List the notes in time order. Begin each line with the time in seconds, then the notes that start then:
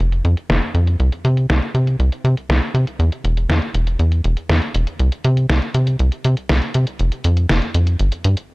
0.00 F1
0.12 closed hi-hat
0.25 F2, closed hi-hat
0.37 closed hi-hat
0.49 F1, snare, closed hi-hat
0.62 closed hi-hat
0.74 F2, closed hi-hat
0.87 closed hi-hat
1.00 C2, closed hi-hat
1.12 closed hi-hat
1.25 C3, closed hi-hat
1.37 closed hi-hat
1.50 C2, snare, closed hi-hat
1.62 closed hi-hat
1.75 C3, closed hi-hat
1.87 closed hi-hat
1.99 C2, closed hi-hat
2.12 closed hi-hat
2.24 C3, closed hi-hat
2.37 closed hi-hat
2.49 C2, snare, closed hi-hat
2.62 closed hi-hat
2.74 C3, closed hi-hat
2.87 closed hi-hat
2.99 E2, closed hi-hat
3.12 closed hi-hat
3.24 E1, closed hi-hat
3.37 closed hi-hat
3.49 E2, snare, closed hi-hat
3.62 closed hi-hat
3.74 E1, closed hi-hat
3.87 closed hi-hat
3.99 E2, closed hi-hat
4.12 closed hi-hat
4.24 E1, closed hi-hat
4.37 closed hi-hat
4.49 E2, snare, closed hi-hat
4.62 closed hi-hat
4.74 E1, closed hi-hat
4.87 closed hi-hat
4.99 C2, closed hi-hat
5.12 closed hi-hat
5.25 C3, closed hi-hat
5.37 closed hi-hat
5.49 C2, snare, closed hi-hat
5.62 closed hi-hat
5.74 C3, closed hi-hat
5.87 closed hi-hat
5.99 C2, closed hi-hat
6.12 closed hi-hat
6.24 C3, closed hi-hat
6.37 closed hi-hat
6.49 C2, snare, closed hi-hat
6.62 closed hi-hat
6.74 C3, closed hi-hat
6.87 closed hi-hat
6.99 F1, closed hi-hat
7.12 closed hi-hat
7.24 F2, closed hi-hat
7.37 closed hi-hat
7.49 F1, snare, closed hi-hat
7.62 closed hi-hat
7.74 F2, closed hi-hat
7.87 closed hi-hat
7.99 G1, closed hi-hat
8.12 closed hi-hat
8.24 G2, closed hi-hat
8.37 closed hi-hat